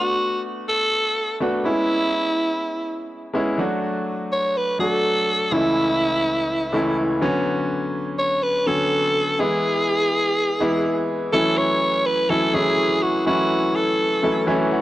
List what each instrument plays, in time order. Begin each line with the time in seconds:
Already playing: grand piano A3 B3 D4 F#4, alto saxophone F#4
0.69 alto saxophone A4
1.40 grand piano A3 B3 D4 F#4
1.64 grand piano G#3 B3 C#4 E4, alto saxophone E4
3.33 grand piano G#3 B3 C#4 E4
3.58 grand piano F#3 A3 D4 F#4
4.32 alto saxophone C#5
4.57 alto saxophone B4
4.79 grand piano F#3 A3 D4 F#4, alto saxophone A4
5.51 grand piano C#2 E3 A3 C#4 E4, alto saxophone E4
6.72 grand piano C#2 E3 A3 C#4 E4
7.21 grand piano D3 F#3 B3 C#4
8.19 alto saxophone C#5
8.43 alto saxophone B4
8.66 grand piano D3 F#3 B3 C#4, alto saxophone A4
9.39 grand piano E3 G#3 B3 E4, alto saxophone G#4
10.60 grand piano E3 G#3 B3 E4
11.33 grand piano E3 F#3 A3 C#4 E4, alto saxophone A4
11.58 alto saxophone C#5
12.06 alto saxophone B4
12.29 grand piano E3 F#3 A3 C#4 E4, alto saxophone A4
12.53 grand piano E3 F#3 A3 C#4 E4, alto saxophone G#4
13.03 alto saxophone F#4
13.26 grand piano E3 F#3 A3 C#4 E4, alto saxophone F#4
13.76 alto saxophone A4
14.22 grand piano E3 F#3 A3 C#4 E4
14.47 grand piano E3 F#3 A3 C#4 E4 G#5
14.71 grand piano F#5